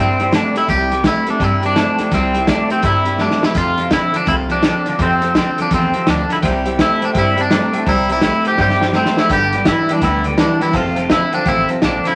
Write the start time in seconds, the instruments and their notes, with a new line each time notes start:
Already playing: upright bass G2, clean electric guitar C3 G3, steel-string acoustic guitar C3 G3 C4 E4 G4
0.18 clean electric guitar C3 G3, steel-string acoustic guitar C4 E4 G4, closed hi-hat
0.31 clean electric guitar C3 A3 D4, steel-string acoustic guitar G3 C4 E4 G4, snare, closed hi-hat
0.55 clean electric guitar C3 A3, steel-string acoustic guitar C4 E4 G4, muted upright bass stroke, snare, closed hi-hat
0.68 upright bass C2, steel-string acoustic guitar C3 G3 C4 E4 G4, clean electric guitar C3 G3, kick, closed hi-hat
0.90 clean electric guitar C3 G3, steel-string acoustic guitar C4 E4 G4, closed hi-hat
1.03 clean electric guitar C3 A3, steel-string acoustic guitar G3 C4 E4 G4, kick, snare, closed hi-hat
1.26 clean electric guitar C3 A3, steel-string acoustic guitar C4 E4 G4, muted upright bass stroke, closed hi-hat
1.30 clean electric guitar D4
1.40 upright bass G2, clean electric guitar C3 G3, steel-string acoustic guitar C3 G3 C4 E4 G4, kick, closed hi-hat
1.62 clean electric guitar C3 G3, steel-string acoustic guitar C4 E4 G4, closed hi-hat
1.66 clean electric guitar D4
1.75 clean electric guitar C3 A3, steel-string acoustic guitar G3 C4 E4 G4, snare, closed hi-hat
1.98 clean electric guitar C3 A3, steel-string acoustic guitar C4 E4 G4, muted upright bass stroke, snare, closed hi-hat
2.11 upright bass C2, steel-string acoustic guitar C3 G3 C4 E4 G4, clean electric guitar C3 G3, kick, closed hi-hat
2.34 clean electric guitar C3 G3, steel-string acoustic guitar C4 E4 G4, closed hi-hat
2.47 clean electric guitar C3 A3 D4, steel-string acoustic guitar G3 C4 E4 G4, kick, snare, closed hi-hat
2.69 clean electric guitar C3 A3, steel-string acoustic guitar C4 E4 G4, muted upright bass stroke, closed hi-hat
2.82 upright bass G2, steel-string acoustic guitar C3 G3 C4 E4 G4, clean electric guitar C3 G3, kick, closed hi-hat
3.05 clean electric guitar C3 G3, steel-string acoustic guitar C4 E4 G4, closed hi-hat
3.18 clean electric guitar C3 A3 D4, steel-string acoustic guitar G3 C4 E4 G4, snare
3.31 snare
3.41 clean electric guitar C3 A3, steel-string acoustic guitar C4 E4 G4, muted upright bass stroke, snare
3.54 clean electric guitar F2 C3, upright bass F2, steel-string acoustic guitar F3 C4 F4 A4, kick, closed hi-hat
3.76 clean electric guitar F2 C3, steel-string acoustic guitar C4 F4 A4, closed hi-hat
3.89 clean electric guitar F2 D3 E4, steel-string acoustic guitar F3 C4 F4 A4, kick, snare, closed hi-hat
4.12 clean electric guitar F2 D3 D4, steel-string acoustic guitar C4 F4 A4, muted upright bass stroke, closed hi-hat
4.25 upright bass C2, clean electric guitar F2 C3 E4, steel-string acoustic guitar F3 C4 F4 A4, kick, closed hi-hat
4.48 clean electric guitar F2 C3 D4, steel-string acoustic guitar C4 F4 A4, closed hi-hat
4.62 clean electric guitar F2 D3, steel-string acoustic guitar F3 C4 F4 A4, snare, closed hi-hat
4.86 clean electric guitar F2 D3, steel-string acoustic guitar C4 F4 A4, muted upright bass stroke, snare, closed hi-hat
4.99 upright bass F2, clean electric guitar F2 C3, steel-string acoustic guitar F3 C4 F4 A4, kick, closed hi-hat
5.21 clean electric guitar F2 C3, steel-string acoustic guitar C4 F4 A4, closed hi-hat
5.34 clean electric guitar F2 D3, steel-string acoustic guitar F3 C4 F4 A4, kick, snare, closed hi-hat
5.58 clean electric guitar F2 D3 D4, steel-string acoustic guitar C4 F4 A4, muted upright bass stroke, closed hi-hat
5.71 upright bass E2, clean electric guitar F2 C3, steel-string acoustic guitar F3 C4 F4 A4, kick, closed hi-hat
5.94 clean electric guitar F2 C3, steel-string acoustic guitar C4 F4 A4, muted upright bass stroke, closed hi-hat
6.06 upright bass D2, clean electric guitar F2 D3 D4, steel-string acoustic guitar F3 C4 F4 A4, snare, closed hi-hat
6.29 clean electric guitar F2 D3 E4, steel-string acoustic guitar C4 F4 A4, snare, closed hi-hat
6.42 upright bass C2, clean electric guitar C3 G3, steel-string acoustic guitar C3 G3 C4 E4 G4, honky-tonk piano C5 E5 G5, kick, closed hi-hat
6.65 clean electric guitar C3 G3, steel-string acoustic guitar C4 E4 G4, honky-tonk piano C5 E5 G5, closed hi-hat
6.77 clean electric guitar C3 A3, steel-string acoustic guitar G3 C4 E4, honky-tonk piano C5 E5 G5, kick, snare, closed hi-hat
6.82 steel-string acoustic guitar G4
7.00 clean electric guitar C3 A3, steel-string acoustic guitar C4 E4 G4, honky-tonk piano C5 E5 G5, muted upright bass stroke, closed hi-hat
7.05 clean electric guitar D4
7.13 upright bass G2, clean electric guitar C3 G3, steel-string acoustic guitar C3 G3 C4 E4, honky-tonk piano C5 E5 G5, kick, closed hi-hat
7.17 steel-string acoustic guitar G4
7.36 clean electric guitar C3 G3, steel-string acoustic guitar E4 G4, honky-tonk piano C5 E5 G5, closed hi-hat
7.40 steel-string acoustic guitar C4, clean electric guitar D4
7.50 clean electric guitar C3 A3, steel-string acoustic guitar G3 C4 E4 G4, honky-tonk piano C5 E5 A#5, snare, closed hi-hat
7.73 clean electric guitar C3 A3, steel-string acoustic guitar C4 E4 G4, honky-tonk piano C5 E5 G5, muted upright bass stroke, closed hi-hat
7.86 upright bass C2, clean electric guitar C3 G3, steel-string acoustic guitar C3 G3 C4 E4 G4, honky-tonk piano C5 E5 A#5, kick, closed hi-hat
8.08 clean electric guitar C3 G3, steel-string acoustic guitar G4, honky-tonk piano C5 E5 A#5, closed hi-hat
8.12 steel-string acoustic guitar C4 E4
8.21 clean electric guitar C3 A3 E4, steel-string acoustic guitar G3 C4, honky-tonk piano C5 E5 G5, kick, snare, closed hi-hat
8.26 steel-string acoustic guitar G4
8.44 clean electric guitar C3 A3, steel-string acoustic guitar G4, honky-tonk piano C5 E5 G5, muted upright bass stroke, closed hi-hat
8.48 steel-string acoustic guitar C4 E4
8.57 upright bass G2, clean electric guitar C3 G3, steel-string acoustic guitar C3 G3 C4 E4, honky-tonk piano C5 E5 G5, kick, snare
8.62 steel-string acoustic guitar G4
8.70 snare
8.80 clean electric guitar C3 G3, steel-string acoustic guitar E4 G4, honky-tonk piano C5 E5 G5, snare
8.85 steel-string acoustic guitar C4
8.93 clean electric guitar C3 A3, steel-string acoustic guitar G3 C4, honky-tonk piano C5 E5 A#5, snare
8.98 steel-string acoustic guitar E4 G4
9.05 snare
9.16 clean electric guitar C3 A3, steel-string acoustic guitar C4 E4 G4, honky-tonk piano C5 E5 G5, muted upright bass stroke, snare
9.29 upright bass G1, clean electric guitar G2 D3, steel-string acoustic guitar G2 D3 G3 B3 D4 G4, honky-tonk piano B4 D5 G5, kick, closed hi-hat
9.52 clean electric guitar G2 D3, steel-string acoustic guitar B3 D4 G4, honky-tonk piano B4 D5 G5, closed hi-hat
9.57 steel-string acoustic guitar G3
9.65 clean electric guitar G2 E3 E4, steel-string acoustic guitar G3, honky-tonk piano B4 D5 G5, kick, snare, closed hi-hat
9.69 steel-string acoustic guitar B3 D4 G4
9.89 clean electric guitar G2 E3, steel-string acoustic guitar G3 B3 D4 G4, honky-tonk piano B4 D5 G5, muted upright bass stroke, closed hi-hat
10.02 upright bass D2, steel-string acoustic guitar G2 D3 G3 B3 D4 G4, clean electric guitar G2 D3 E4, honky-tonk piano B4 D5 G5, kick, closed hi-hat
10.24 clean electric guitar G2 D3, steel-string acoustic guitar D4 G4, honky-tonk piano B4 D5 G5, closed hi-hat
10.28 steel-string acoustic guitar G3 B3
10.37 clean electric guitar G2 E3, steel-string acoustic guitar G3 B3 D4 G4, honky-tonk piano B4 D5 A5, snare, closed hi-hat
10.60 clean electric guitar G2 E3 E4, steel-string acoustic guitar B3 D4 G4, honky-tonk piano B4 D5 G5, muted upright bass stroke, snare, closed hi-hat
10.65 steel-string acoustic guitar G3
10.73 upright bass F1, clean electric guitar F2 C3, steel-string acoustic guitar F3 C4 F4 A4, honky-tonk piano C5 F5 A5, kick, closed hi-hat
10.95 clean electric guitar F2 C3, steel-string acoustic guitar F4 A4, honky-tonk piano C5 F5 A5, closed hi-hat
11.00 steel-string acoustic guitar C4
11.09 clean electric guitar F2 D3 E4, steel-string acoustic guitar F3 C4 F4, honky-tonk piano C5 F5 A5, kick, snare, closed hi-hat
11.13 steel-string acoustic guitar A4
11.32 clean electric guitar F2 D3 D4, steel-string acoustic guitar A4, honky-tonk piano C5 F5 G5, muted upright bass stroke, closed hi-hat
11.37 steel-string acoustic guitar C4 F4
11.45 upright bass A1, clean electric guitar F2 C3 E4, steel-string acoustic guitar F3 C4 F4 A4, honky-tonk piano C5 F5 G5, kick, closed hi-hat
11.68 clean electric guitar F2 C3, steel-string acoustic guitar F4 A4, honky-tonk piano C5 F5 A5, closed hi-hat
11.72 steel-string acoustic guitar C4
11.81 upright bass A#1, clean electric guitar F2 D3 D4, steel-string acoustic guitar F3 C4 F4, honky-tonk piano C5 F5 A5, snare, closed hi-hat
11.85 steel-string acoustic guitar A4
12.04 clean electric guitar F2 D3 E4, steel-string acoustic guitar F4 A4, honky-tonk piano C5 F5 A5, snare, closed hi-hat
12.08 steel-string acoustic guitar C4